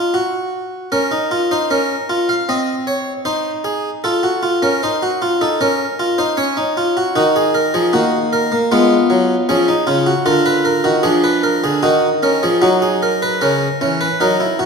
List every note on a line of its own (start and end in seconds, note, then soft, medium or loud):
0.00 0.13 F4 medium
0.14 0.89 F#4 medium
0.92 1.11 C#4 medium
0.92 1.48 A#4 medium
1.11 1.30 D#4 medium
1.31 1.50 F4 medium
1.51 1.70 D#4 medium
1.51 1.70 C5 medium
1.71 1.95 C#4 medium
1.71 2.27 A#4 medium
2.09 2.33 F4 medium
2.29 2.48 F5 medium
2.49 3.23 C4 medium
2.49 2.73 D#5 medium
2.87 3.11 C#5 medium
3.25 4.01 D#4 medium
3.25 3.49 C5 medium
3.64 3.89 G#4 medium
4.04 4.23 F4 medium
4.04 4.61 A4 medium
4.23 4.42 F#4 medium
4.43 4.62 F4 medium
4.62 4.81 C#4 medium
4.62 4.81 A#4 medium
4.83 5.01 D#4 medium
4.83 5.39 C5 medium
5.02 5.21 F#4 medium
5.22 5.40 F4 medium
5.41 5.59 D#4 medium
5.41 5.59 A4 medium
5.61 5.84 C#4 medium
5.61 6.17 A#4 medium
5.99 6.18 F4 medium
6.18 6.37 D#4 medium
6.18 6.37 C5 medium
6.37 6.56 C#4 medium
6.37 7.13 C#5 medium
6.57 6.76 D#4 medium
6.77 6.96 F4 medium
6.97 7.15 F#4 medium
7.16 7.72 D#3 medium
7.16 7.91 D#4 medium
7.16 7.35 F#4 medium
7.36 7.54 G#4 medium
7.54 7.73 A#4 medium
7.74 7.93 F3 medium
7.74 7.93 G#4 medium
7.93 8.50 D#3 medium
7.93 8.51 A#3 medium
7.93 8.17 F#4 medium
8.33 8.56 A#4 medium
8.52 8.70 A#3 medium
8.72 8.95 G#3 loud
8.72 9.46 B3 medium
8.72 9.46 F4 medium
9.10 9.34 F#3 medium
9.49 9.73 F3 medium
9.49 9.67 C#4 medium
9.49 10.25 G#4 medium
9.68 9.87 D#4 medium
9.87 10.12 C#3 medium
9.87 10.06 F4 medium
10.06 10.26 F#4 medium
10.26 10.83 D3 loud
10.26 11.02 F4 medium
10.26 10.45 A#4 medium
10.46 10.65 B4 medium
10.65 10.84 A#4 medium
10.84 11.04 D#3 medium
10.84 11.04 F#4 medium
11.03 11.61 F3 medium
11.03 11.80 D4 medium
11.03 11.23 G#4 medium
11.24 11.43 B4 medium
11.43 11.63 A#4 medium
11.64 11.83 D3 medium
11.64 11.83 G#4 medium
11.83 12.41 D#3 medium
11.83 12.08 D#4 medium
11.83 12.08 F#4 medium
12.23 12.47 C#4 medium
12.23 12.42 A#4 medium
12.43 12.62 F3 medium
12.43 12.62 G#4 medium
12.62 13.39 F#3 medium
12.62 13.39 D#4 medium
12.62 12.81 F#4 medium
12.82 13.01 G#4 medium
13.03 13.22 A#4 medium
13.22 13.41 B4 medium
13.41 13.66 C#3 medium
13.41 13.66 C#4 medium
13.41 13.99 A#4 medium
13.81 14.06 E3 medium
13.81 14.06 C#4 medium
14.01 14.20 B4 medium
14.20 14.45 F#3 medium
14.20 14.40 D#4 medium
14.20 14.66 A#4 medium
14.40 14.59 E4 medium
14.59 14.66 E3 medium
14.59 14.66 F#4 medium